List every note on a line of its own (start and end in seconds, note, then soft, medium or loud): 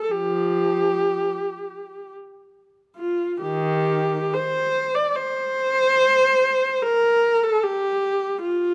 0.03 0.11 A4 soft
0.11 1.27 F3 medium
0.11 2.13 G4 medium
2.97 3.37 F4 medium
3.41 4.30 D#3 medium
3.41 4.34 G4 medium
4.33 4.96 C5 medium
4.95 5.16 D5 medium
5.16 6.82 C5 medium
6.83 7.44 A#4 medium
7.44 7.64 A4 medium
7.63 8.44 G4 medium
8.43 8.74 F4 medium